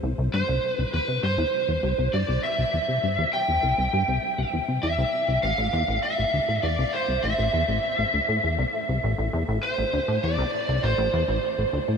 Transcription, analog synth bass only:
X:1
M:4/4
L:1/16
Q:1/4=100
K:Am
V:1 name="Analog synth bass" clef=bass
C,, C,, G,, C,, z C,, E,, C, G,, E,, z E,, C,, C,, G,, C,, | z C,, E,, C, G,, E,, z E,, C,, C,, G,, C,, z C,, E,, C, | E,, C,, z C,, A,,, A,,, E,, A,,, z A,,, D,, A,, E,, C,, z C,, | A,,, A,,, E,, A,,, z A,,, D,, A,, E,, C,, z C,, A,,, A,,, E,, A,,, |
z A,,, D,, A,, E,, C,, z C,, A,,, A,,, E,, A,,, z A,,, D,, A,, |]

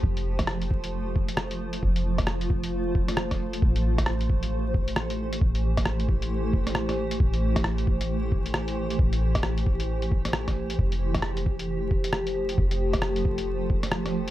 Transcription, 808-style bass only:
X:1
M:4/4
L:1/8
Q:"Swing 16ths" 1/4=134
K:Am
V:1 name="808-style bass" clef=bass
F,,,8 | F,,,8 | A,,,8 | A,,,8 |
A,,,8 | A,,,8 | F,,,8 | F,,,8 |]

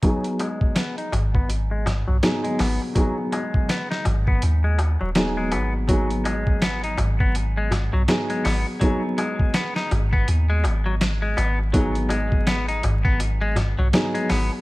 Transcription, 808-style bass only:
X:1
M:4/4
L:1/16
Q:"Swing 16ths" 1/4=82
K:G#m
V:1 name="808-style bass" clef=bass
z6 G,,,4- G,,, B,,, z2 G,,, z | z6 G,,,2 D,,3 D,,,3 G,,,2- | G,,,6 G,,,4- G,,, B,,, z2 G,,, z | z6 G,,,2 D,,2 G,,,4 G,,,2- |
G,,,6 G,,,4- G,,, B,,, z2 G,,, z |]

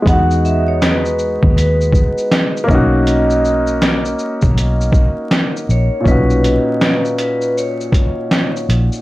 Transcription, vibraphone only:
X:1
M:4/4
L:1/16
Q:"Swing 16ths" 1/4=80
K:B
V:1 name="Vibraphone"
f2 e c B4 B6 z2 | z12 z2 c2 | B6 B2 c6 z2 |]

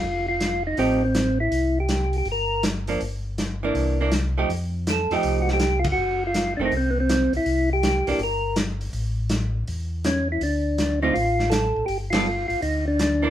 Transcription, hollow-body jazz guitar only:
X:1
M:4/4
L:1/8
Q:"Swing" 1/4=162
K:Cmix
V:1 name="Hollow-body jazz guitar"
z4 [F,A,_EG] z3 | z6 z [F,B,D] | z3 [E,B,D]2 [E,B,D] z [F,A,_EG] | z3 [F,A,_EG]3 z2 |
z3 [^D,A,C] z4 | z3 [E,B,D] z4 | z8 | z3 [D,A,CF] z4 |
z [G,=B,FA] z4 z [E,_B,D] |]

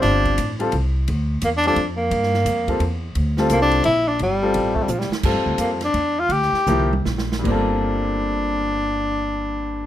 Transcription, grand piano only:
X:1
M:3/4
L:1/8
Q:"Swing" 1/4=173
K:Gdor
V:1 name="Grand piano"
[G,CFc]2 z [G,CFA] z2 | z3 [G,CFA] z2 | z3 [G,CFA] z2 | z [G,CFA]3 z2 |
z [G,CFA]3 z2 | [G,CFA]3 z3 | z2 [F,B,EG] z3 | [G,,G,B,CFA]6- |
[G,,G,B,CFA]6 |]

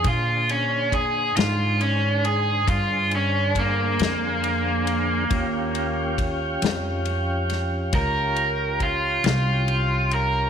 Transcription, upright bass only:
X:1
M:12/8
L:1/8
Q:3/8=46
K:Eb
V:1 name="Upright bass" clef=bass
B,,3 A,,3 G,,3 F,,3 | E,,3 F,,3 _D,,3 C,,3 |]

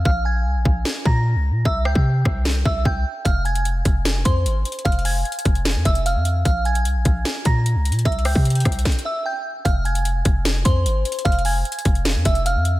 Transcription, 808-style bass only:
X:1
M:4/4
L:1/16
Q:1/4=150
K:Fm
V:1 name="808-style bass" clef=bass
B,,,4 C,, B,,, B,,,2 z2 B,,3 D,,3/2 B,,3/2 | C,,2 D,, C,3 C,,4 C,,2 C,,2 z2 | F,,,6 F,,,4 F,,2 A,,,2 z2 | F,,,4 z2 F,,,3 F,, F,,,3 F,,3 |
B,,,4 C,, B,,, B,,,2 z2 B,,3 D,,3/2 B,,3/2 | C,,2 D,, C,3 C,,2 z8 | F,,,6 F,,,4 F,,2 A,,,2 z2 | F,,,4 z2 F,,,3 F,, F,,,3 F,,3 |]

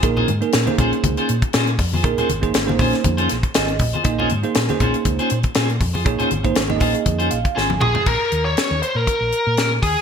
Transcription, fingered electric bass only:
X:1
M:4/4
L:1/16
Q:"Swing 16ths" 1/4=120
K:Bbm
V:1 name="Fingered electric bass" clef=bass
B,,,2 A,, z B,, z B,,, z D,, z B,, z B,,2 F,,2 | B,,, z A,,,2 A,,,2 B,,, z F,,2 B,,, z A,,,2 B,,, z | B,,,2 A,, z B,, z B,,, z D,, z B,, z B,,2 F,,2 | B,,, z A,,,2 A,,,2 B,,, z F,,2 B,,, z A,,,2 B,,, z |
B,,, z E,,2 z E,, z B,, z B,,, z B,,3 E,, z |]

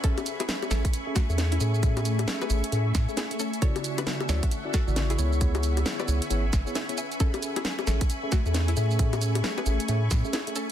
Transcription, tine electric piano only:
X:1
M:4/4
L:1/16
Q:"Swing 16ths" 1/4=134
K:A
V:1 name="Tine electric piano"
[CGAe]6 [CGAe] z2 [CGAe] z [CGAe]3 [CGAe]2 | [CGAe]6 [CGAe] z [CGAe] z2 [CGAe] z [CGAe] z2 | [C,EFd]6 [CEFd] z2 [CEFd] z [C,EFd]3 [B,EGc]2 | [B,EGc]6 [B,EGc] z [B,EGc] z2 [B,EGc] z [B,EGc] z2 |
[CGAe]6 [CGAe] z2 [CGAe] z [CGAe]3 [CGAe]2 | [CGAe]6 [CGAe] z [CGAe] z2 [CGAe] z [CGAe] z2 |]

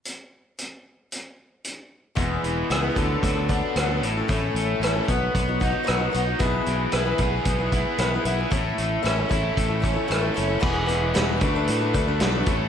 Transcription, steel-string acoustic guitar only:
X:1
M:4/4
L:1/16
Q:1/4=114
K:E
V:1 name="Steel-string acoustic guitar"
z16 | [E,,E,G,B,EG]4 [E,,E,G,B,EG] [G,B,EG] [F,B,=DA]3 [B,DA] [F,B,DA]2 [=D,F,B,DA] [B,DA] [A,CEA] [CEA] | [A,,A,CEA]4 [A,,A,CEA] [CEA] [B,DFc]3 [DFc] [B,DFc] [DFc] [B,DFc] [DFc] [B,DFc] [DFc] | [B,EGB]4 [B,EGB] [EGB] [B,EGB]3 [EGB] [B,EGB]2 [B,EGB] [EGB] [B,EGB] [EGB] |
[A,EAc]4 [A,EAc] [EAc] [A,EAc]3 [EAc] [A,EAc] [EAc] [A,EAc] [EAc] [A,EAc] [EAc] | [E,B,EGB] [EGB] [B,EGB]2 [E,B,EGB]2 [A,=DAB] [A,DAB]2 [A,DAB] [A,DAB] [A,DAB] [=D,F,A,DAB]2 [A,EAc]2 |]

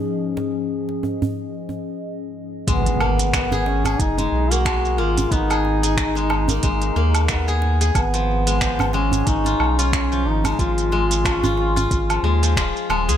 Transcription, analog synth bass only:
X:1
M:4/4
L:1/16
Q:"Swing 16ths" 1/4=91
K:G#dor
V:1 name="Analog synth bass" clef=bass
z16 | G,,,8 F,,,2 B,,,4 G,,,2 | G,,,8 G,,,2 D,,6 | G,,,8 G,,,2 B,,,4 G,,,2 |
G,,,8 G,,,2 D,,2 D,,, z D,,, C,, |]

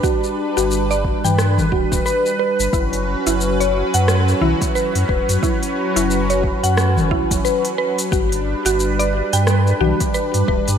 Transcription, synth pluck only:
X:1
M:4/4
L:1/16
Q:"Swing 16ths" 1/4=89
K:none
V:1 name="Synth pluck"
^F3 F z d z g3 F z B z B z | E3 E z ^c z ^f3 E z B z B z | E3 E z ^c z ^f3 E z B z B z | ^F3 F z d z g3 F z B z B z |]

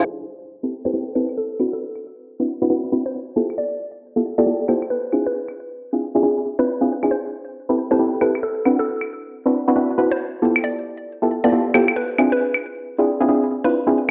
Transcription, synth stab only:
X:1
M:4/4
L:1/16
Q:"Swing 16ths" 1/4=136
K:Am
V:1 name="Synth stab"
z4 z [CEGAB] z [CEGAB] [CEGAB]2 [CEGAB] z3 [CDE^FB]2- | [CDE^FB]4- [CDEFB] [CDEFB] z [CDEFB] [CDEFB]2 [CDEFB] z3 [B,E=FGA]2- | [B,EFGA]4- [B,EFGA] [B,EFGA] z [B,EFGA] [B,EFGA]2 [B,EFGA] z3 [CDEF^G]2- | [CDEF^G]4- [CDEFG] [CDEFG] z [CDEFG] [CDEFG]2 z [CDEFB] z [CDEFG] z [CDEFG] |
z4 z [CEGAB] z [CEGAB] [CEGAB]2 [CEGAB] z3 [CDE^FB]2- | [CDE^FB]4- [CDEFB] [CDEFB] z [CDEFB] [CDEFB]2 [CDEFB] z3 [B,E=FGA]2- | [B,EFGA]4- [B,EFGA] [B,EFGA] z [B,EFGA] [B,EFGA]2 [B,EFGA] z3 [CDEF^G]2- | [CDEF^G]4- [CDEFG] [CDEFG] z [CDEFG] [CDEFG]2 z [CDEFB] z [CDEFG] z2 |]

